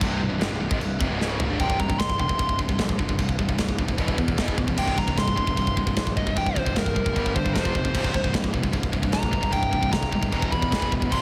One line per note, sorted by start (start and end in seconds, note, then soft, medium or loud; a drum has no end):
0.00 0.20 C1 medium
0.00 0.18 C2 medium
0.00 0.19 G2 loud
0.00 0.20 C3 loud
0.00 kick loud
0.00 china medium
0.20 0.30 C1 medium
0.20 0.28 C2 medium
0.20 0.29 G2 medium
0.30 0.40 C1 medium
0.30 0.39 C2 medium
0.30 0.39 G2 medium
0.40 0.50 G1 loud
0.40 0.49 G2 medium
0.40 0.50 D3 loud
0.40 snare loud
0.40 china medium
0.50 0.60 C1 medium
0.50 0.59 C2 medium
0.50 0.59 G2 medium
0.60 0.70 C1 medium
0.60 0.70 C2 medium
0.60 0.70 G2 medium
0.70 0.79 G#1 loud
0.70 0.80 G#2 medium
0.70 0.80 D#3 medium
0.70 kick loud
0.80 0.99 C1 medium
0.80 0.96 C2 medium
0.80 0.96 G2 medium
0.80 china medium
0.99 1.10 F1 loud
0.99 1.09 F2 loud
0.99 1.10 C3 loud
0.99 kick loud
1.10 1.47 C#1 loud
1.10 1.49 C#2 loud
1.10 1.49 G#2 loud
1.10 1.50 C#3 loud
1.21 snare medium
1.40 floor tom medium
1.49 1.59 G1 medium
1.49 1.59 G2 loud
1.49 1.60 D3 loud
1.60 1.79 C1 medium
1.60 1.78 C2 medium
1.60 1.78 G2 medium
1.60 1.79 C3 loud
1.60 1.79 G5 medium
1.60 kick medium
1.60 china medium
1.70 kick medium
1.80 1.99 C1 loud
1.80 1.89 C2 medium
1.80 1.89 G2 medium
1.80 1.99 A#5 medium
1.80 kick medium
1.90 1.97 C2 medium
1.90 1.98 G2 medium
1.90 kick medium
1.98 2.18 C1 medium
1.98 2.17 C2 medium
1.98 2.17 G2 medium
1.98 2.19 C6 medium
1.98 kick medium
1.98 snare loud
1.98 china medium
2.10 kick medium
2.19 2.38 E1 medium
2.19 2.29 C2 medium
2.19 2.28 G2 medium
2.19 2.58 C6 medium
2.19 kick medium
2.29 2.37 C2 medium
2.29 2.37 G2 medium
2.29 kick medium
2.38 2.58 C1 medium
2.38 2.56 C2 medium
2.38 2.57 G2 medium
2.38 kick medium
2.38 china medium
2.49 kick medium
2.58 2.78 C1 medium
2.58 2.68 C2 medium
2.58 2.68 G2 medium
2.58 kick medium
2.69 2.78 C2 medium
2.69 2.78 G2 medium
2.69 kick medium
2.79 2.98 A#1 medium
2.79 2.97 C2 medium
2.79 2.97 G2 medium
2.79 kick medium
2.79 snare loud
2.79 china medium
2.89 kick medium
2.99 3.18 G1 medium
2.99 3.09 C2 medium
2.99 3.09 G2 medium
2.99 kick medium
3.09 3.18 C2 medium
3.09 3.19 G2 medium
3.09 kick medium
3.19 3.37 C1 medium
3.19 3.37 C2 medium
3.19 3.37 G2 medium
3.19 kick medium
3.19 china medium
3.29 kick medium
3.39 3.58 C1 medium
3.39 3.48 C2 medium
3.39 3.48 G2 medium
3.39 kick medium
3.49 3.58 C2 medium
3.49 3.59 G2 medium
3.49 kick medium
3.58 3.77 C1 medium
3.58 3.77 C2 medium
3.58 3.77 G2 medium
3.58 kick medium
3.58 snare loud
3.58 china medium
3.69 kick medium
3.78 3.97 D#1 medium
3.78 3.88 C2 medium
3.78 3.87 G2 medium
3.78 kick medium
3.88 3.98 C2 medium
3.88 3.98 G2 medium
3.88 kick medium
3.98 4.17 E1 medium
3.98 4.17 E2 medium
3.98 4.17 B2 loud
3.98 4.17 E3 loud
3.98 kick medium
3.98 china medium
4.08 kick medium
4.18 4.37 E2 medium
4.18 4.27 E2 medium
4.18 4.27 B2 medium
4.18 kick medium
4.28 4.36 E2 medium
4.28 4.37 B2 medium
4.28 kick medium
4.37 4.57 E1 medium
4.37 4.56 E2 loud
4.37 4.56 B2 medium
4.37 4.57 E3 loud
4.37 kick medium
4.37 snare loud
4.37 china medium
4.48 kick medium
4.57 4.76 C#1 medium
4.57 4.67 E2 medium
4.57 4.67 B2 medium
4.57 kick medium
4.68 4.78 E2 medium
4.68 4.78 B2 medium
4.68 kick medium
4.78 4.96 C1 medium
4.78 4.96 C2 medium
4.78 4.96 G2 loud
4.78 4.97 C3 loud
4.78 4.97 G5 medium
4.78 kick loud
4.78 crash loud
4.78 china medium
4.88 kick medium
4.97 5.16 C1 medium
4.97 5.07 C2 medium
4.97 5.06 G2 medium
4.97 5.17 A#5 medium
4.97 kick medium
5.08 5.17 C2 medium
5.08 5.17 G2 medium
5.08 kick medium
5.18 5.36 C1 medium
5.18 5.35 C2 medium
5.18 5.35 G2 medium
5.18 5.35 C6 medium
5.18 kick medium
5.18 snare loud
5.18 china medium
5.28 kick medium
5.36 5.56 E1 medium
5.36 5.47 C2 medium
5.36 5.47 G2 medium
5.36 5.75 C6 medium
5.36 kick medium
5.47 5.57 C2 medium
5.47 5.57 G2 medium
5.47 kick medium
5.57 5.76 C1 loud
5.57 5.75 C2 medium
5.57 5.75 G2 medium
5.57 kick medium
5.57 china medium
5.67 kick medium
5.77 5.96 C1 medium
5.77 5.86 C2 medium
5.77 5.86 G2 medium
5.77 kick medium
5.87 5.96 C2 medium
5.87 5.97 G2 medium
5.87 kick medium
5.96 6.16 A#1 medium
5.96 6.15 C2 medium
5.96 6.15 G2 medium
5.96 kick medium
5.96 snare loud
5.96 china medium
6.07 kick medium
6.17 6.35 G1 medium
6.17 6.27 C2 medium
6.17 6.26 G2 medium
6.17 6.36 D#5 loud
6.17 kick medium
6.27 6.36 C2 medium
6.27 6.37 G2 medium
6.27 kick medium
6.36 6.55 C1 medium
6.36 6.54 C2 medium
6.36 6.55 G2 medium
6.36 6.57 G5 medium
6.36 kick medium
6.36 china medium
6.46 kick medium
6.56 6.75 C1 loud
6.56 6.66 C2 medium
6.56 6.66 G2 medium
6.56 6.76 C5 loud
6.56 kick medium
6.66 6.75 C2 medium
6.66 6.75 G2 medium
6.66 kick medium
6.76 6.95 C1 medium
6.76 6.94 C2 medium
6.76 6.94 G2 medium
6.76 7.34 A#4 medium
6.76 kick medium
6.76 snare loud
6.76 china medium
6.86 kick medium
6.95 7.15 F1 medium
6.95 7.04 C2 medium
6.95 7.04 G2 medium
6.95 kick medium
7.05 7.15 C2 medium
7.05 7.14 G2 medium
7.05 kick medium
7.15 7.35 G1 medium
7.15 7.34 G2 medium
7.15 7.34 D3 loud
7.15 7.34 G3 loud
7.15 kick medium
7.15 china medium
7.26 kick medium
7.35 7.44 G2 medium
7.35 7.54 G2 medium
7.35 7.44 D3 medium
7.35 7.53 C5 medium
7.35 kick medium
7.46 7.55 G2 medium
7.46 7.55 D3 medium
7.46 kick medium
7.55 7.74 F1 medium
7.55 7.74 F2 loud
7.55 7.74 C3 medium
7.55 7.74 F3 loud
7.55 8.32 C5 medium
7.55 kick medium
7.55 snare loud
7.55 china medium
7.65 kick medium
7.75 7.94 F1 medium
7.75 7.84 F2 medium
7.75 7.83 C3 medium
7.75 kick medium
7.85 7.94 F2 medium
7.85 7.95 C3 medium
7.85 kick medium
7.95 8.14 C1 medium
7.95 8.13 C2 medium
7.95 8.14 G2 loud
7.95 8.14 C3 loud
7.95 kick medium
7.95 crash medium
7.95 china medium
8.04 kick medium
8.14 8.33 C1 medium
8.14 8.23 C2 medium
8.14 8.23 G2 medium
8.14 kick medium
8.24 8.33 C2 medium
8.24 8.33 G2 medium
8.24 kick medium
8.34 8.53 C1 medium
8.34 8.52 C2 medium
8.34 8.52 G2 medium
8.34 kick medium
8.34 snare loud
8.34 china medium
8.44 kick medium
8.54 8.72 E1 medium
8.54 8.63 C2 medium
8.54 8.63 G2 medium
8.54 kick medium
8.63 8.73 C2 medium
8.63 8.73 G2 medium
8.63 kick medium
8.73 8.92 C1 medium
8.73 8.92 C2 medium
8.73 8.92 G2 medium
8.73 kick medium
8.73 china medium
8.83 kick medium
8.93 9.12 C1 loud
8.93 9.03 C2 medium
8.93 9.02 G2 medium
8.93 kick medium
9.03 9.11 C2 medium
9.03 9.12 G2 medium
9.03 kick medium
9.12 9.32 A#1 medium
9.12 9.31 C2 medium
9.12 9.31 G2 medium
9.12 9.52 A#5 loud
9.12 kick medium
9.12 snare loud
9.12 china medium
9.23 kick medium
9.33 9.52 G1 medium
9.33 9.42 C2 medium
9.33 9.41 G2 medium
9.33 kick medium
9.42 9.52 C2 medium
9.42 9.52 G2 medium
9.42 kick medium
9.52 9.72 C1 medium
9.52 9.71 C2 medium
9.52 9.71 G2 medium
9.52 9.92 G5 medium
9.52 kick loud
9.52 china medium
9.63 kick medium
9.73 9.92 C1 medium
9.73 9.82 C2 medium
9.73 9.81 G2 medium
9.73 kick medium
9.83 9.92 C2 medium
9.83 9.92 G2 medium
9.83 kick medium
9.92 10.12 C1 loud
9.92 10.11 C2 medium
9.92 10.11 G2 medium
9.92 10.50 A#5 medium
9.92 kick medium
9.92 snare loud
9.92 china medium
10.03 kick medium
10.12 10.32 C#1 medium
10.12 10.22 C2 medium
10.12 10.21 G2 medium
10.12 kick medium
10.22 10.32 C2 medium
10.22 10.32 G2 medium
10.22 kick medium
10.32 10.51 E1 loud
10.32 10.51 E2 medium
10.32 10.51 B2 medium
10.32 10.52 E3 medium
10.32 kick medium
10.32 china medium
10.42 kick medium
10.52 10.71 E2 loud
10.52 10.61 E2 medium
10.52 10.60 B2 medium
10.52 10.91 B5 loud
10.52 kick medium
10.62 10.70 E2 medium
10.62 10.70 B2 medium
10.62 kick medium
10.71 10.91 E1 medium
10.71 10.90 E2 loud
10.71 10.90 B2 loud
10.71 10.91 E3 loud
10.71 kick medium
10.71 snare loud
10.71 china medium
10.82 kick medium
10.92 11.11 E1 medium
10.92 11.00 E2 medium
10.92 11.00 B2 medium
10.92 kick medium
11.01 11.11 E2 medium
11.01 11.11 B2 medium
11.01 kick medium
11.11 11.22 C1 medium
11.11 11.22 C2 medium
11.11 11.22 G2 loud
11.11 11.22 C3 medium
11.11 11.21 C6 medium
11.11 kick medium
11.11 crash loud
11.11 china medium